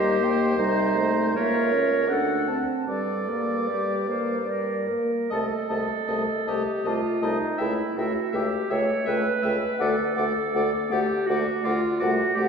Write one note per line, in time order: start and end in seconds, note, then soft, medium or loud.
0.00 0.54 D#2 soft
0.00 0.22 G3 soft
0.00 0.58 G4 medium
0.00 1.35 C5 medium
0.00 0.25 D#5 soft
0.21 0.56 A#3 soft
0.21 0.58 G5 soft
0.57 1.33 C2 medium
0.57 0.96 G3 soft
0.57 1.34 D#4 medium
0.57 0.98 D#5 soft
0.95 1.34 A3 soft
0.95 1.35 C5 soft
1.34 2.12 C#2 soft
1.34 1.74 A#3 soft
1.34 2.14 A#4 medium
1.34 2.10 C#5 medium
1.34 1.74 E5 soft
1.73 2.10 C#4 soft
1.73 2.09 C#5 soft
2.08 2.60 D2 soft
2.08 2.50 D4 soft
2.08 2.61 A4 medium
2.08 2.60 F#5 soft
2.08 2.49 F#5 soft
2.48 2.88 C4 soft
2.48 2.88 A5 soft
2.88 4.93 G2 soft
2.88 3.30 G3 soft
2.88 3.71 A4 soft
2.88 4.87 D5 soft
2.88 3.31 D5 soft
3.29 3.70 A#3 soft
3.29 3.69 A#4 soft
3.67 4.10 G3 soft
3.67 4.08 G4 soft
3.67 4.09 D5 soft
4.07 4.37 A#3 soft
4.07 4.46 A#4 soft
4.07 4.51 C5 soft
4.46 4.92 G3 soft
4.46 5.31 A#4 soft
4.46 4.89 D5 soft
4.88 5.31 A#3 soft
4.88 5.12 A#4 soft
5.30 5.48 C2 soft
5.30 5.48 A3 soft
5.30 6.49 A4 medium
5.30 5.46 D#5 soft
5.30 5.40 A5 soft
5.69 5.86 C2 soft
5.69 5.86 A3 soft
5.69 5.86 D#5 soft
5.69 5.78 A5 soft
6.07 6.25 C2 soft
6.07 6.25 A3 soft
6.07 6.23 D#5 soft
6.07 6.17 A5 soft
6.47 6.63 C2 soft
6.47 6.63 A3 soft
6.47 6.89 G4 medium
6.47 6.63 D#5 soft
6.47 6.56 A5 soft
6.84 7.01 C2 soft
6.84 7.02 A3 soft
6.84 7.25 F4 soft
6.84 7.00 D#5 soft
6.84 6.95 A5 soft
7.21 7.38 C2 soft
7.21 7.37 A3 soft
7.21 7.62 D#4 soft
7.21 7.38 D#5 soft
7.21 7.31 A5 soft
7.58 7.76 C#2 soft
7.58 7.76 A3 soft
7.58 7.99 E4 medium
7.58 7.74 E5 soft
7.58 7.67 G5 soft
7.95 8.13 C#2 soft
7.95 8.11 A3 soft
7.95 8.36 F#4 medium
7.95 8.13 E5 soft
7.95 8.06 G5 soft
8.32 8.50 C#2 soft
8.32 8.49 A3 soft
8.32 8.73 G4 medium
8.32 8.48 E5 soft
8.32 8.43 G5 soft
8.70 8.87 C#2 soft
8.70 8.86 A3 soft
8.70 9.06 C#5 medium
8.70 8.86 E5 soft
8.70 8.79 G5 soft
9.05 9.23 C#2 soft
9.05 9.23 A3 soft
9.05 9.83 B4 medium
9.05 9.21 E5 soft
9.05 9.16 G5 soft
9.42 9.60 C#2 soft
9.42 9.58 A3 soft
9.42 9.58 E5 soft
9.42 9.53 G5 soft
9.79 9.96 D2 medium
9.79 9.95 A3 soft
9.79 10.94 A4 medium
9.79 9.96 D5 soft
9.79 9.87 F#5 soft
10.16 10.35 D2 soft
10.16 10.32 A3 soft
10.16 10.33 D5 soft
10.16 10.25 F#5 soft
10.54 10.71 D2 soft
10.54 10.70 A3 soft
10.54 10.71 D5 soft
10.54 10.63 F#5 soft
10.89 11.08 D2 medium
10.89 11.05 A3 soft
10.89 11.28 G4 medium
10.89 11.07 D5 soft
10.89 10.99 F#5 soft
11.27 11.45 D2 medium
11.27 11.43 A3 soft
11.27 11.66 F#4 medium
11.27 11.46 D5 soft
11.27 11.38 F#5 soft
11.63 11.82 D2 soft
11.63 11.79 A3 soft
11.63 11.99 F4 medium
11.63 11.80 D5 soft
11.63 11.73 F#5 soft
11.99 12.18 C2 medium
11.99 12.17 A3 medium
11.99 12.37 F#4 medium
11.99 12.15 D5 medium
11.99 12.10 F#5 medium
12.35 12.48 C2 medium
12.35 12.48 A3 soft
12.35 12.48 G4 medium
12.35 12.48 D5 medium
12.41 12.48 F#5 medium